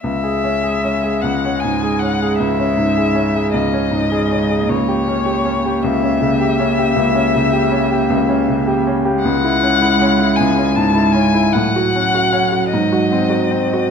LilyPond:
<<
  \new Staff \with { instrumentName = "Violin" } { \time 12/8 \key cis \minor \tempo 4. = 52 e''4. fis''8 gis''8 fis''8 e''4. dis''4. | cis''4. e''1 r8 | fis''4. gis''8 a''8 gis''8 fis''4. dis''4. | }
  \new Staff \with { instrumentName = "Grand piano" } { \time 12/8 \key cis \minor cis,16 gis'16 cis'16 gis'16 cis'16 gis'16 cis,16 cis'16 gis,16 gis'16 cis'16 gis'16 cis,16 cis'16 gis,16 gis'16 cis'16 gis'16 cis,16 cis'16 gis,16 gis'16 cis'16 gis'16 | cis,16 g'16 cis'16 g'16 cis'16 g'16 cis,16 cis'16 cis16 g'16 cis'16 g'16 cis,16 cis'16 cis16 g'16 cis'16 g'16 cis,16 cis'16 cis16 g'16 cis'16 g'16 | cis,16 e'16 cis'16 e'16 cis'16 e'16 cis,16 cis'16 gis,16 e'16 cis'16 e'16 a,16 fis'16 cis'16 fis'16 cis'16 fis'16 gis,16 fis'16 bis16 fis'16 bis16 fis'16 | }
  \new Staff \with { instrumentName = "Cello" } { \clef bass \time 12/8 \key cis \minor gis1. | ais1. | gis2. fis2. | }
>>